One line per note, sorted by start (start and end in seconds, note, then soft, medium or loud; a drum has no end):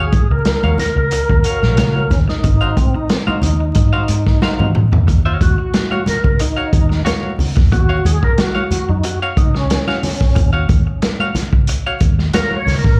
0.00 0.20 D#2 loud
0.00 0.13 F#4 medium
0.00 0.32 G#4 loud
0.00 0.13 C#5 medium
0.00 0.13 F5 medium
0.12 muted clean electric guitar stroke soft
0.12 kick loud
0.12 closed hi-hat medium
0.12 high conga medium
0.30 0.43 C#2 medium
0.30 0.78 A#4 loud
0.30 muted clean electric guitar stroke medium
0.45 muted clean electric guitar stroke soft
0.45 snare loud
0.45 closed hi-hat medium
0.45 muted conga soft
0.63 0.76 D#2 loud
0.63 0.78 F#4 medium
0.63 0.79 C#5 medium
0.63 0.79 F5 medium
0.63 high conga medium
0.78 2.15 A#4 loud
0.78 muted clean electric guitar stroke medium
0.78 snare soft
0.78 closed hi-hat medium
0.78 muted conga soft
0.78 high conga medium
0.78 low conga medium
0.96 1.09 C#2 medium
0.96 muted clean electric guitar stroke soft
1.11 muted picked electric bass stroke soft
1.11 muted clean electric guitar stroke soft
1.11 closed hi-hat loud
1.11 muted conga soft
1.29 1.42 D#2 medium
1.29 muted clean electric guitar stroke soft
1.29 kick medium
1.44 1.62 F#4 medium
1.44 1.62 C#5 medium
1.44 1.61 F5 medium
1.44 closed hi-hat medium
1.62 1.78 A#1 medium
1.62 1.76 F#4 soft
1.62 1.77 C#5 medium
1.62 1.77 F5 medium
1.62 snare soft
1.62 high conga soft
1.77 2.04 C#2 loud
1.77 2.08 F#4 medium
1.77 2.09 C#5 medium
1.77 2.09 F5 loud
1.77 snare loud
1.77 closed hi-hat loud
1.77 muted conga soft
1.77 high conga medium
1.95 high conga medium
2.10 2.25 D#2 medium
2.10 2.20 C#4 medium
2.10 kick medium
2.10 snare soft
2.10 closed hi-hat medium
2.10 muted conga soft
2.10 low conga medium
2.28 2.79 D#4 medium
2.28 muted clean electric guitar stroke soft
2.28 snare soft
2.44 2.70 G#1 loud
2.44 muted clean electric guitar stroke soft
2.44 kick loud
2.44 closed hi-hat medium
2.44 muted conga soft
2.44 low conga medium
2.61 2.75 F#4 medium
2.61 2.76 C5 medium
2.61 2.76 F5 medium
2.77 2.95 C4 medium
2.77 kick medium
2.77 closed hi-hat medium
2.77 muted conga soft
2.77 high conga medium
2.94 3.11 D#4 medium
2.94 muted clean electric guitar stroke medium
2.94 muted picked electric bass stroke soft
3.09 3.17 C4 medium
3.09 muted clean electric guitar stroke soft
3.09 snare loud
3.09 closed hi-hat medium
3.09 muted conga soft
3.27 3.43 D#4 medium
3.27 3.41 F#4 medium
3.27 3.42 C5 medium
3.27 3.42 F5 medium
3.27 muted picked electric bass stroke soft
3.27 high conga medium
3.42 3.69 D#2 loud
3.42 4.72 D#4 medium
3.42 muted clean electric guitar stroke soft
3.42 closed hi-hat medium
3.42 high conga medium
3.42 low conga medium
3.60 muted clean electric guitar stroke soft
3.75 3.90 G#2 medium
3.75 muted clean electric guitar stroke soft
3.75 kick loud
3.75 closed hi-hat loud
3.75 muted conga soft
3.93 4.08 F#4 medium
3.93 4.09 C5 medium
3.93 4.09 F5 medium
4.08 4.23 G#2 medium
4.08 closed hi-hat medium
4.26 muted clean electric guitar stroke soft
4.26 kick medium
4.26 snare soft
4.26 high conga soft
4.42 4.73 F#4 medium
4.42 4.73 C5 medium
4.42 4.73 F5 medium
4.42 snare medium
4.42 muted conga soft
4.42 high conga medium
4.59 4.72 G#2 loud
4.59 high tom medium
4.59 high conga medium
4.75 muted clean electric guitar stroke soft
4.75 mid tom medium
4.75 low conga medium
4.92 5.05 E2 medium
4.92 muted clean electric guitar stroke soft
4.92 floor tom medium
5.07 5.34 D#2 loud
5.07 muted clean electric guitar stroke soft
5.07 kick medium
5.07 closed hi-hat medium
5.07 low conga medium
5.25 5.40 F#4 medium
5.25 5.41 C#5 medium
5.25 5.41 F5 medium
5.41 5.55 D#2 loud
5.41 6.04 F#4 medium
5.41 kick medium
5.41 closed hi-hat medium
5.41 high conga medium
5.58 muted clean electric guitar stroke soft
5.73 muted clean electric guitar stroke soft
5.73 snare loud
5.73 closed hi-hat medium
5.73 muted conga soft
5.91 6.05 F#4 medium
5.91 6.05 C#5 medium
5.91 6.05 F5 medium
5.91 high conga medium
6.06 6.41 A#4 loud
6.06 muted clean electric guitar stroke soft
6.06 muted picked electric bass stroke soft
6.06 snare soft
6.06 closed hi-hat medium
6.06 muted conga soft
6.06 high conga medium
6.06 low conga medium
6.24 6.37 C#2 medium
6.24 muted clean electric guitar stroke soft
6.24 kick medium
6.39 7.03 D#4 medium
6.39 muted clean electric guitar stroke soft
6.39 closed hi-hat loud
6.39 muted conga soft
6.57 6.71 F#4 medium
6.57 6.71 C#5 medium
6.57 6.72 F5 medium
6.72 6.99 D#2 medium
6.72 muted clean electric guitar stroke soft
6.72 kick loud
6.72 closed hi-hat medium
6.72 muted conga soft
6.89 muted clean electric guitar stroke soft
6.89 snare soft
7.05 7.36 F#4 medium
7.05 7.37 C#5 medium
7.05 7.37 F5 medium
7.05 snare loud
7.05 closed hi-hat loud
7.05 muted conga soft
7.05 high conga medium
7.23 high conga medium
7.38 7.53 C#2 medium
7.38 muted clean electric guitar stroke soft
7.38 open hi-hat medium
7.38 muted conga soft
7.38 low conga medium
7.56 7.69 E2 medium
7.56 muted clean electric guitar stroke soft
7.56 kick loud
7.56 snare soft
7.72 7.98 D#2 loud
7.72 8.06 F#4 loud
7.72 muted clean electric guitar stroke soft
7.72 kick loud
7.72 closed hi-hat medium
7.72 low conga medium
7.89 8.03 F#4 medium
7.89 8.03 C#5 medium
7.89 8.04 F5 medium
8.04 8.19 D#2 loud
8.04 8.24 G#4 medium
8.04 muted clean electric guitar stroke medium
8.04 closed hi-hat medium
8.04 muted conga soft
8.04 high conga medium
8.23 8.39 A#4 loud
8.23 muted clean electric guitar stroke soft
8.23 kick medium
8.38 8.91 F#4 loud
8.38 muted clean electric guitar stroke soft
8.38 snare loud
8.38 closed hi-hat medium
8.55 8.70 F#4 medium
8.55 8.70 C#5 medium
8.55 8.70 F5 medium
8.55 high conga medium
8.71 muted clean electric guitar stroke soft
8.71 muted picked electric bass stroke soft
8.71 closed hi-hat medium
8.71 high conga medium
8.71 low conga medium
8.89 9.01 F#2 medium
8.89 9.05 D#4 medium
8.89 muted clean electric guitar stroke soft
9.03 9.20 F#4 medium
9.03 muted clean electric guitar stroke soft
9.03 closed hi-hat medium
9.03 muted conga soft
9.22 9.36 F#4 medium
9.22 9.37 C#5 medium
9.22 9.37 F5 medium
9.37 9.63 C#2 medium
9.37 9.56 D#4 medium
9.37 muted clean electric guitar stroke soft
9.37 kick loud
9.37 closed hi-hat medium
9.37 muted conga soft
9.54 10.51 C#4 medium
9.54 muted clean electric guitar stroke soft
9.54 snare soft
9.70 muted clean electric guitar stroke soft
9.70 snare loud
9.70 closed hi-hat loud
9.70 high conga medium
9.87 10.02 F#4 medium
9.87 10.02 C#5 medium
9.87 10.02 F5 medium
9.87 snare soft
9.87 high conga medium
10.03 muted clean electric guitar stroke soft
10.03 snare soft
10.03 open hi-hat medium
10.03 muted conga soft
10.03 low conga medium
10.20 muted clean electric guitar stroke soft
10.20 kick loud
10.20 snare soft
10.35 10.62 D#2 loud
10.35 muted clean electric guitar stroke soft
10.35 kick loud
10.35 closed hi-hat medium
10.35 muted conga soft
10.35 low conga medium
10.53 10.67 F#4 medium
10.53 10.68 C#5 medium
10.53 10.68 F5 medium
10.69 10.83 D#2 medium
10.69 kick loud
10.69 closed hi-hat medium
10.69 muted conga soft
10.69 high conga medium
10.87 muted clean electric guitar stroke soft
11.02 muted clean electric guitar stroke soft
11.02 snare loud
11.02 closed hi-hat medium
11.20 11.35 F#4 medium
11.20 11.35 C#5 medium
11.20 11.35 F5 medium
11.20 high conga medium
11.35 muted picked electric bass stroke soft
11.35 snare soft
11.35 closed hi-hat medium
11.35 muted conga soft
11.35 high conga medium
11.35 low conga medium
11.53 11.65 C#2 medium
11.53 muted clean electric guitar stroke soft
11.53 kick medium
11.67 muted clean electric guitar stroke soft
11.67 closed hi-hat loud
11.87 12.01 F#4 medium
11.87 12.01 C#5 medium
11.87 12.01 F5 medium
12.00 12.27 D#2 loud
12.00 kick loud
12.00 closed hi-hat medium
12.00 muted conga soft
12.19 muted clean electric guitar stroke soft
12.19 snare soft
12.34 12.65 F#4 medium
12.34 12.55 A#4 loud
12.34 12.65 C#5 medium
12.34 12.65 F5 medium
12.34 snare loud
12.34 closed hi-hat loud
12.34 high conga medium
12.51 high conga medium
12.56 12.79 C#5 loud
12.66 12.81 C#2 medium
12.66 muted clean electric guitar stroke soft
12.66 snare soft
12.66 open hi-hat medium
12.66 muted conga soft
12.66 low conga medium
12.79 13.00 A#4 medium
12.84 12.97 A1 medium
12.84 muted clean electric guitar stroke medium
12.84 kick loud
12.84 snare soft